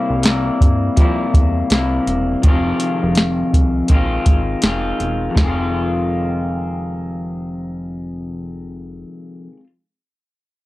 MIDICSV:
0, 0, Header, 1, 4, 480
1, 0, Start_track
1, 0, Key_signature, -4, "minor"
1, 0, Tempo, 732601
1, 1596, Time_signature, 4, 2, 24, 8
1, 6979, End_track
2, 0, Start_track
2, 0, Title_t, "Clean electric guitar"
2, 0, Program_c, 0, 27
2, 0, Note_on_c, 0, 48, 70
2, 0, Note_on_c, 0, 55, 80
2, 0, Note_on_c, 0, 58, 82
2, 0, Note_on_c, 0, 64, 83
2, 140, Note_off_c, 0, 48, 0
2, 148, Note_on_c, 0, 48, 61
2, 150, Note_off_c, 0, 55, 0
2, 158, Note_on_c, 0, 55, 56
2, 159, Note_off_c, 0, 58, 0
2, 163, Note_off_c, 0, 64, 0
2, 166, Note_on_c, 0, 58, 60
2, 177, Note_on_c, 0, 64, 60
2, 624, Note_off_c, 0, 48, 0
2, 632, Note_on_c, 0, 48, 67
2, 637, Note_off_c, 0, 55, 0
2, 641, Note_off_c, 0, 58, 0
2, 644, Note_on_c, 0, 55, 67
2, 646, Note_off_c, 0, 64, 0
2, 649, Note_on_c, 0, 58, 63
2, 657, Note_on_c, 0, 64, 68
2, 1109, Note_off_c, 0, 48, 0
2, 1117, Note_on_c, 0, 48, 64
2, 1118, Note_off_c, 0, 55, 0
2, 1122, Note_off_c, 0, 58, 0
2, 1126, Note_off_c, 0, 64, 0
2, 1126, Note_on_c, 0, 55, 58
2, 1134, Note_on_c, 0, 58, 57
2, 1141, Note_on_c, 0, 64, 59
2, 1588, Note_on_c, 0, 41, 71
2, 1589, Note_off_c, 0, 48, 0
2, 1597, Note_on_c, 0, 48, 76
2, 1601, Note_off_c, 0, 55, 0
2, 1604, Note_on_c, 0, 51, 69
2, 1605, Note_off_c, 0, 58, 0
2, 1608, Note_off_c, 0, 64, 0
2, 1613, Note_on_c, 0, 56, 81
2, 1620, Note_on_c, 0, 60, 83
2, 1627, Note_on_c, 0, 65, 88
2, 2550, Note_off_c, 0, 51, 0
2, 2552, Note_off_c, 0, 41, 0
2, 2553, Note_on_c, 0, 51, 63
2, 2556, Note_off_c, 0, 48, 0
2, 2562, Note_off_c, 0, 56, 0
2, 2564, Note_on_c, 0, 56, 60
2, 2568, Note_off_c, 0, 60, 0
2, 2570, Note_on_c, 0, 60, 71
2, 2572, Note_off_c, 0, 65, 0
2, 2581, Note_on_c, 0, 65, 68
2, 3027, Note_off_c, 0, 51, 0
2, 3030, Note_on_c, 0, 51, 60
2, 3041, Note_off_c, 0, 56, 0
2, 3043, Note_on_c, 0, 56, 64
2, 3049, Note_off_c, 0, 60, 0
2, 3049, Note_off_c, 0, 65, 0
2, 3052, Note_on_c, 0, 60, 61
2, 3059, Note_on_c, 0, 65, 64
2, 3475, Note_on_c, 0, 41, 60
2, 3506, Note_on_c, 0, 48, 57
2, 3533, Note_off_c, 0, 51, 0
2, 3535, Note_on_c, 0, 51, 60
2, 3555, Note_off_c, 0, 65, 0
2, 3556, Note_off_c, 0, 56, 0
2, 3559, Note_on_c, 0, 56, 72
2, 3581, Note_off_c, 0, 60, 0
2, 3583, Note_on_c, 0, 60, 76
2, 3602, Note_on_c, 0, 65, 78
2, 6205, Note_off_c, 0, 41, 0
2, 6237, Note_off_c, 0, 48, 0
2, 6266, Note_off_c, 0, 51, 0
2, 6290, Note_off_c, 0, 56, 0
2, 6314, Note_off_c, 0, 60, 0
2, 6333, Note_off_c, 0, 65, 0
2, 6979, End_track
3, 0, Start_track
3, 0, Title_t, "Analog synth bass"
3, 0, Program_c, 1, 38
3, 64, Note_on_c, 1, 36, 103
3, 332, Note_off_c, 1, 36, 0
3, 399, Note_on_c, 1, 43, 78
3, 590, Note_off_c, 1, 43, 0
3, 636, Note_on_c, 1, 41, 91
3, 828, Note_off_c, 1, 41, 0
3, 877, Note_on_c, 1, 40, 81
3, 1068, Note_off_c, 1, 40, 0
3, 1119, Note_on_c, 1, 36, 83
3, 1310, Note_off_c, 1, 36, 0
3, 1356, Note_on_c, 1, 28, 85
3, 1548, Note_off_c, 1, 28, 0
3, 1596, Note_on_c, 1, 29, 98
3, 1788, Note_off_c, 1, 29, 0
3, 1985, Note_on_c, 1, 29, 95
3, 2252, Note_off_c, 1, 29, 0
3, 2317, Note_on_c, 1, 36, 86
3, 2508, Note_off_c, 1, 36, 0
3, 2554, Note_on_c, 1, 34, 94
3, 2746, Note_off_c, 1, 34, 0
3, 2793, Note_on_c, 1, 32, 90
3, 2986, Note_off_c, 1, 32, 0
3, 3038, Note_on_c, 1, 29, 75
3, 3229, Note_off_c, 1, 29, 0
3, 3277, Note_on_c, 1, 28, 83
3, 3468, Note_off_c, 1, 28, 0
3, 3514, Note_on_c, 1, 29, 79
3, 5933, Note_off_c, 1, 29, 0
3, 6979, End_track
4, 0, Start_track
4, 0, Title_t, "Drums"
4, 152, Note_on_c, 9, 42, 90
4, 167, Note_on_c, 9, 38, 101
4, 218, Note_off_c, 9, 42, 0
4, 233, Note_off_c, 9, 38, 0
4, 400, Note_on_c, 9, 36, 81
4, 405, Note_on_c, 9, 42, 65
4, 465, Note_off_c, 9, 36, 0
4, 470, Note_off_c, 9, 42, 0
4, 635, Note_on_c, 9, 42, 83
4, 638, Note_on_c, 9, 36, 84
4, 701, Note_off_c, 9, 42, 0
4, 703, Note_off_c, 9, 36, 0
4, 878, Note_on_c, 9, 36, 84
4, 881, Note_on_c, 9, 42, 61
4, 944, Note_off_c, 9, 36, 0
4, 947, Note_off_c, 9, 42, 0
4, 1114, Note_on_c, 9, 42, 83
4, 1125, Note_on_c, 9, 38, 111
4, 1180, Note_off_c, 9, 42, 0
4, 1191, Note_off_c, 9, 38, 0
4, 1359, Note_on_c, 9, 42, 61
4, 1424, Note_off_c, 9, 42, 0
4, 1595, Note_on_c, 9, 42, 72
4, 1597, Note_on_c, 9, 36, 93
4, 1660, Note_off_c, 9, 42, 0
4, 1663, Note_off_c, 9, 36, 0
4, 1833, Note_on_c, 9, 42, 71
4, 1899, Note_off_c, 9, 42, 0
4, 2065, Note_on_c, 9, 42, 76
4, 2080, Note_on_c, 9, 38, 96
4, 2130, Note_off_c, 9, 42, 0
4, 2145, Note_off_c, 9, 38, 0
4, 2317, Note_on_c, 9, 36, 70
4, 2321, Note_on_c, 9, 42, 59
4, 2383, Note_off_c, 9, 36, 0
4, 2386, Note_off_c, 9, 42, 0
4, 2544, Note_on_c, 9, 42, 88
4, 2553, Note_on_c, 9, 36, 75
4, 2610, Note_off_c, 9, 42, 0
4, 2618, Note_off_c, 9, 36, 0
4, 2791, Note_on_c, 9, 42, 68
4, 2793, Note_on_c, 9, 36, 79
4, 2856, Note_off_c, 9, 42, 0
4, 2858, Note_off_c, 9, 36, 0
4, 3026, Note_on_c, 9, 42, 80
4, 3037, Note_on_c, 9, 38, 105
4, 3092, Note_off_c, 9, 42, 0
4, 3103, Note_off_c, 9, 38, 0
4, 3276, Note_on_c, 9, 42, 57
4, 3342, Note_off_c, 9, 42, 0
4, 3513, Note_on_c, 9, 36, 83
4, 3520, Note_on_c, 9, 38, 92
4, 3579, Note_off_c, 9, 36, 0
4, 3586, Note_off_c, 9, 38, 0
4, 6979, End_track
0, 0, End_of_file